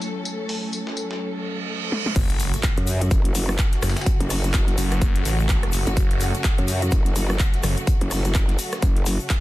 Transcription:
0.00 1.21 F#3 medium
0.00 2.12 F#3 medium
0.00 2.12 A3 medium
0.00 2.12 C#4 medium
0.00 1.21 E4 medium
0.00 1.21 A4 medium
0.00 2.12 A4 medium
0.00 1.21 C#5 medium
0.00 tambourine medium
0.25 tambourine medium
0.49 open hi-hat medium
0.73 tambourine medium
0.87 snare soft
0.97 tambourine medium
1.11 snare soft
1.21 reverse cymbal medium
1.92 snare medium
2.06 snare medium
2.16 2.51 F#1 loud
2.16 9.40 C#3 medium
2.16 9.40 F#3 medium
2.16 9.40 A3 medium
2.16 9.40 F#4 medium
2.16 kick loud
2.16 closed hi-hat medium
2.16 crash loud
2.16 tambourine medium
2.16 impact medium
2.16 shaker medium
2.30 closed hi-hat medium
2.40 open hi-hat loud
2.40 tambourine medium
2.40 shaker medium
2.54 closed hi-hat soft
2.54 shaker soft
2.63 kick loud
2.63 snare loud
2.63 clap loud
2.63 closed hi-hat medium
2.63 tambourine medium
2.63 shaker medium
2.77 3.09 F#2 loud
2.77 closed hi-hat medium
2.87 open hi-hat loud
2.87 tambourine medium
2.87 shaker medium
3.01 closed hi-hat soft
3.01 shaker soft
3.11 3.57 F#1 loud
3.11 kick loud
3.11 closed hi-hat medium
3.11 tambourine medium
3.11 shaker medium
3.25 closed hi-hat medium
3.35 open hi-hat loud
3.35 tambourine medium
3.35 shaker medium
3.49 cross-stick medium
3.49 snare soft
3.49 shaker soft
3.58 kick loud
3.58 snare loud
3.58 clap loud
3.58 closed hi-hat medium
3.58 tambourine medium
3.58 shaker soft
3.73 snare soft
3.73 closed hi-hat medium
3.82 3.94 F#1 medium
3.82 cross-stick medium
3.82 snare medium
3.82 open hi-hat loud
3.82 tambourine medium
3.82 shaker medium
3.90 snare medium
3.90 tambourine medium
3.96 snare medium
3.96 closed hi-hat soft
3.96 tambourine medium
3.96 shaker soft
4.01 snare medium
4.01 tambourine medium
4.06 kick loud
4.06 closed hi-hat medium
4.06 tambourine medium
4.06 shaker medium
4.20 4.52 F#1 loud
4.20 closed hi-hat medium
4.30 cross-stick medium
4.30 open hi-hat medium
4.30 open hi-hat loud
4.30 shaker medium
4.44 closed hi-hat soft
4.44 shaker soft
4.53 kick loud
4.53 snare loud
4.53 clap loud
4.53 closed hi-hat medium
4.53 tambourine medium
4.53 shaker medium
4.68 snare soft
4.68 closed hi-hat medium
4.78 5.24 F#1 loud
4.78 open hi-hat loud
4.78 tambourine medium
4.78 shaker medium
4.91 cross-stick medium
4.91 snare soft
4.91 closed hi-hat soft
4.91 shaker soft
5.01 kick loud
5.01 closed hi-hat medium
5.01 tambourine medium
5.01 shaker medium
5.16 closed hi-hat medium
5.25 5.71 A1 medium
5.25 open hi-hat loud
5.25 tambourine medium
5.25 shaker loud
5.40 shaker soft
5.49 kick loud
5.49 snare loud
5.49 clap loud
5.49 closed hi-hat medium
5.49 tambourine medium
5.49 shaker medium
5.63 cross-stick medium
5.63 closed hi-hat medium
5.72 5.85 F#1 medium
5.72 open hi-hat loud
5.72 tambourine medium
5.72 shaker medium
5.87 5.95 F#1 loud
5.87 closed hi-hat soft
5.87 shaker soft
5.97 6.32 F#1 loud
5.97 kick loud
5.97 closed hi-hat medium
5.97 tambourine medium
5.97 shaker medium
6.11 closed hi-hat medium
6.21 open hi-hat loud
6.21 tambourine medium
6.21 shaker medium
6.34 closed hi-hat soft
6.34 shaker soft
6.44 kick loud
6.44 snare loud
6.44 clap loud
6.44 closed hi-hat medium
6.44 tambourine medium
6.44 shaker medium
6.58 6.90 F#2 loud
6.58 closed hi-hat medium
6.68 open hi-hat loud
6.68 tambourine medium
6.68 shaker loud
6.82 closed hi-hat soft
6.82 shaker soft
6.91 7.38 F#1 loud
6.91 kick loud
6.91 closed hi-hat medium
6.91 tambourine medium
6.91 shaker medium
7.06 closed hi-hat medium
7.16 open hi-hat loud
7.16 tambourine medium
7.16 shaker loud
7.30 cross-stick medium
7.30 snare soft
7.30 shaker soft
7.39 kick loud
7.39 snare loud
7.39 clap loud
7.39 closed hi-hat medium
7.39 tambourine medium
7.39 shaker medium
7.54 snare soft
7.54 closed hi-hat medium
7.63 7.75 F#1 medium
7.63 cross-stick medium
7.63 open hi-hat loud
7.63 tambourine medium
7.63 shaker medium
7.77 closed hi-hat soft
7.77 shaker soft
7.87 kick loud
7.87 closed hi-hat medium
7.87 tambourine medium
7.87 shaker medium
8.01 8.33 F#1 loud
8.01 closed hi-hat medium
8.11 cross-stick medium
8.11 open hi-hat loud
8.11 open hi-hat medium
8.11 shaker medium
8.25 closed hi-hat soft
8.25 shaker soft
8.35 kick loud
8.35 snare loud
8.35 clap loud
8.35 closed hi-hat medium
8.35 tambourine medium
8.35 shaker medium
8.49 snare soft
8.49 closed hi-hat medium
8.59 open hi-hat loud
8.59 tambourine medium
8.59 shaker loud
8.72 cross-stick medium
8.72 snare soft
8.72 closed hi-hat soft
8.72 shaker soft
8.82 9.18 F#1 loud
8.82 kick loud
8.82 closed hi-hat medium
8.82 tambourine medium
8.82 shaker medium
8.97 closed hi-hat soft
9.06 open hi-hat loud
9.06 tambourine medium
9.06 shaker loud
9.20 shaker soft
9.30 kick loud
9.30 snare loud
9.30 clap loud
9.30 closed hi-hat medium
9.30 tambourine medium
9.30 shaker medium

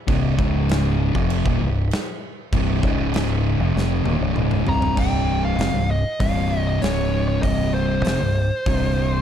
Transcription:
0.07 0.36 C1 loud
0.07 0.37 C2 medium
0.07 0.37 G2 loud
0.07 0.37 C3 medium
0.07 kick loud
0.07 crash medium
0.37 1.11 C#1 medium
0.37 1.13 C#2 medium
0.37 1.14 G#2 loud
0.37 1.14 C#3 loud
0.37 kick loud
0.69 snare loud
0.69 crash medium
1.14 1.44 F1 loud
1.14 1.44 F2 medium
1.14 1.44 C3 medium
1.14 1.45 F3 loud
1.14 kick loud
1.30 crash medium
1.45 1.60 D#1 medium
1.45 1.59 D#2 medium
1.45 1.60 A#2 loud
1.45 kick medium
1.61 1.90 C1 medium
1.61 1.85 C2 medium
1.61 1.85 G2 medium
1.91 snare loud
1.91 crash medium
2.53 2.81 C1 loud
2.53 2.82 C2 medium
2.53 2.82 G2 medium
2.53 2.83 C3 loud
2.53 kick loud
2.53 crash medium
2.82 3.56 C#1 medium
2.82 3.58 C#2 medium
2.82 3.59 G#2 medium
2.82 3.59 C#3 loud
2.82 kick loud
3.14 snare loud
3.14 crash medium
3.60 3.74 F1 loud
3.60 3.73 F2 medium
3.60 3.74 C3 medium
3.75 4.04 F1 loud
3.75 4.05 F2 loud
3.75 4.05 C3 loud
3.75 4.05 F3 loud
3.75 snare medium
4.05 4.20 D#1 medium
4.05 4.20 D#2 medium
4.05 4.20 A#2 medium
4.05 high tom medium
4.20 4.35 C1 medium
4.20 4.34 C2 medium
4.20 4.35 G2 loud
4.35 4.65 C#1 medium
4.35 4.65 C#2 medium
4.35 4.66 G#2 loud
4.35 4.66 C#3 loud
4.35 mid tom medium
4.51 mid tom medium
4.66 4.95 C1 medium
4.66 4.95 C2 medium
4.66 4.95 G2 medium
4.66 4.96 C3 medium
4.66 4.99 A#5 loud
4.66 floor tom medium
4.82 floor tom loud
4.96 5.55 C1 loud
4.96 5.57 C2 medium
4.96 5.58 G2 medium
4.96 5.57 C3 loud
4.96 5.41 G5 loud
4.96 kick loud
4.96 crash loud
5.45 5.91 F5 medium
5.58 5.73 F1 loud
5.58 5.73 F2 medium
5.58 5.73 C3 loud
5.58 snare loud
5.58 open hi-hat medium
5.74 6.03 C1 medium
5.74 5.99 C2 medium
5.74 5.99 G2 medium
5.91 6.20 D#5 medium
6.20 6.78 C1 medium
6.20 6.81 C2 loud
6.20 6.81 G2 loud
6.20 6.81 C3 loud
6.20 6.68 F5 loud
6.20 kick loud
6.20 open hi-hat medium
6.67 6.82 D#5 medium
6.81 7.40 C#1 medium
6.81 7.42 C#2 medium
6.81 7.42 G#2 loud
6.81 7.43 C#3 loud
6.81 7.27 C#5 medium
6.81 snare loud
6.81 open hi-hat medium
7.28 7.42 C#5 medium
7.42 8.01 C1 loud
7.42 8.04 C2 medium
7.42 8.05 G2 medium
7.42 8.04 C3 loud
7.42 7.72 D#5 medium
7.42 kick loud
7.42 open hi-hat medium
7.74 9.22 C5 medium
8.04 8.19 F1 medium
8.04 8.19 F2 medium
8.04 8.20 C3 loud
8.04 snare loud
8.04 open hi-hat medium
8.20 8.49 C1 medium
8.20 8.45 C2 medium
8.20 8.46 G2 medium
8.66 9.22 C1 loud
8.66 9.22 C2 loud
8.66 9.22 G2 loud
8.66 9.22 C3 loud
8.66 kick loud
8.66 open hi-hat medium

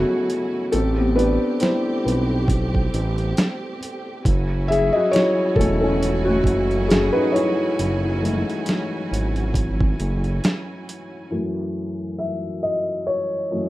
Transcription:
0.00 0.69 F#3 medium
0.00 0.74 A3 medium
0.00 0.74 B3 medium
0.00 0.69 C#4 medium
0.00 0.74 C#4 medium
0.00 0.69 E4 medium
0.00 0.74 E4 medium
0.00 0.69 F#4 medium
0.00 0.75 F#4 medium
0.00 0.75 G#4 medium
0.00 0.72 A4 medium
0.00 0.75 C#5 loud
0.00 0.69 G#5 medium
0.30 closed hi-hat medium
0.72 1.38 A1 loud
0.72 4.22 A3 medium
0.72 4.22 C4 medium
0.72 0.96 C4 medium
0.72 4.22 G4 medium
0.72 0.98 A4 medium
0.72 closed hi-hat medium
0.97 1.04 B3 medium
0.97 1.02 G4 medium
1.16 1.58 D4 medium
1.16 1.62 B4 medium
1.16 closed hi-hat medium
1.60 3.78 E4 medium
1.60 3.77 C5 medium
1.60 snare medium
1.60 closed hi-hat medium
2.04 2.90 B1 medium
2.04 2.66 G3 soft
2.04 2.65 C4 medium
2.04 2.66 B4 medium
2.04 closed hi-hat medium
2.48 kick loud
2.48 closed hi-hat medium
2.75 kick medium
2.94 3.34 A1 medium
2.94 closed hi-hat medium
3.18 closed hi-hat soft
3.37 snare loud
3.37 closed hi-hat medium
3.83 closed hi-hat medium
4.25 4.91 F#1 loud
4.25 11.28 F#3 medium
4.25 11.28 C#4 medium
4.25 11.28 E4 medium
4.25 11.28 F#4 medium
4.25 11.27 G#5 medium
4.25 kick loud
4.25 closed hi-hat medium
4.68 4.93 G#4 medium
4.68 4.95 E5 loud
4.68 closed hi-hat medium
4.93 5.13 F#4 medium
4.93 5.13 D#5 loud
5.11 5.55 E4 medium
5.11 5.58 C#5 loud
5.11 closed hi-hat medium
5.16 snare loud
5.56 6.41 E1 medium
5.56 6.86 E3 soft
5.56 6.26 A3 medium
5.56 5.82 C#4 medium
5.56 6.86 G#4 soft
5.56 5.79 A4 medium
5.56 kick medium
5.61 closed hi-hat medium
5.81 6.24 C#4 medium
5.81 6.23 A4 medium
6.03 closed hi-hat medium
6.25 6.87 A3 medium
6.25 6.91 F#4 medium
6.44 7.10 F#1 medium
6.44 kick medium
6.44 closed hi-hat medium
6.71 closed hi-hat soft
6.88 7.14 C#4 medium
6.88 7.12 G#4 medium
6.88 snare loud
6.88 closed hi-hat medium
7.13 7.33 D#4 medium
7.13 7.34 B4 medium
7.32 10.40 E4 medium
7.32 10.38 C#5 medium
7.32 closed hi-hat medium
7.79 8.44 F#1 loud
7.79 closed hi-hat medium
8.22 11.27 E3 medium
8.22 11.27 G#3 soft
8.22 11.28 A3 medium
8.22 closed hi-hat medium
8.50 closed hi-hat soft
8.66 snare loud
8.66 closed hi-hat medium
9.12 9.95 G#1 medium
9.12 closed hi-hat medium
9.36 closed hi-hat soft
9.54 kick loud
9.54 closed hi-hat medium
9.81 kick loud
10.00 10.40 F#1 medium
10.00 closed hi-hat medium
10.24 closed hi-hat soft
10.44 snare loud
10.44 closed hi-hat medium
10.89 closed hi-hat medium
11.31 12.59 F#2 medium
11.31 12.60 E3 medium
11.31 12.60 A3 medium
12.19 12.60 E5 medium
12.63 12.73 D#5 medium
13.07 13.69 C#5 medium
13.51 13.69 F#2 soft
13.51 13.69 E3 soft
13.51 13.69 A3 soft

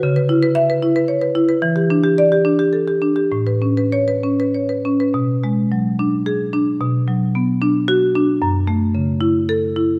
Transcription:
0.03 1.59 C#3 loud
0.16 0.37 B4 medium
0.29 0.50 E4 medium
0.43 0.63 B4 medium
0.55 0.76 E5 loud
0.70 0.90 B4 medium
0.83 1.03 E4 medium
0.96 1.17 B4 medium
1.08 1.22 C#5 medium
1.22 1.43 B4 medium
1.35 1.57 E4 medium
1.49 1.63 B4 medium
1.62 3.29 E3 loud
1.76 1.98 G4 medium
1.90 2.13 D4 medium
2.04 2.26 G4 medium
2.18 2.40 D5 loud
2.32 2.54 G4 medium
2.45 2.68 D4 medium
2.59 2.82 G4 medium
2.73 2.88 A4 medium
2.88 3.12 G4 medium
3.02 3.26 D4 medium
3.16 3.32 G4 medium
3.32 5.10 A2 medium
3.47 3.72 B4 medium
3.62 3.87 C#4 medium
3.77 4.03 B4 medium
3.92 4.18 C#5 medium
4.08 4.33 B4 medium
4.23 4.48 C#4 medium
4.40 4.64 B4 medium
4.54 4.70 C#5 medium
4.69 4.94 B4 medium
4.85 5.09 C#4 medium
5.00 5.15 B4 medium
5.14 6.77 B2 medium
5.44 5.88 G#3 medium
5.72 6.16 F#3 medium
5.99 6.43 D4 medium
6.26 6.70 G#4 loud
6.53 6.81 D4 medium
6.81 8.37 B2 loud
7.08 7.51 F#3 medium
7.35 7.78 B3 medium
7.62 8.04 D4 medium
7.88 8.31 F#4 loud
8.15 8.41 D4 medium
8.42 9.99 F#2 loud
8.67 9.10 A3 medium
8.95 9.37 C#3 medium
9.21 9.64 E4 medium
9.49 9.92 A4 loud
9.76 9.99 E4 medium

